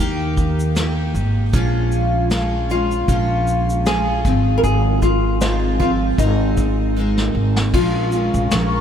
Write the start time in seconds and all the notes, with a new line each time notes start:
0.00 D#2 D#3 A#3 D#4 G4
0.37 kick, shaker
0.59 shaker
0.75 D#3 A#3 D#4 G4, snare, shaker
1.14 G#1, shaker
1.53 A#1 A#2 F3 G#3 C#4 F4, kick, shaker
1.92 shaker
2.31 F3 G#3 C#4 F4, snare, shaker
2.69 G#3 C#4 F4, shaker
2.91 shaker
3.08 A#1 A#2 F3 G#3 C#4 F4, kick, shaker
3.47 shaker
3.70 shaker
3.86 F3 G#3 C#4 F4 G#4, snare, shaker
4.25 G#1 G#2 D#3 F3 G#3 C4 F4, kick, snare, shaker
4.58 A#4
4.63 G#1 G#4, shaker
5.02 F4, kick, shaker
5.41 F3 G#3 C4 D#4 F4, snare, shaker
5.79 F3 G#3 C4 F4, kick, shaker
6.18 G#1 G#3 C4 D#4 A#4, kick, shaker
6.57 kick, shaker
6.96 G#3 C4 D#4 A#4
7.17 snare
7.35 G#1
7.56 snare
7.74 A#1 A#2 F3 G#3 C#4 F4 A#4 F5 A#5 C#6, kick, crash
8.12 G#3 C#4 F4, shaker
8.34 A#1, shaker
8.51 A#1 F3 G#3 C#4 F4, snare, shaker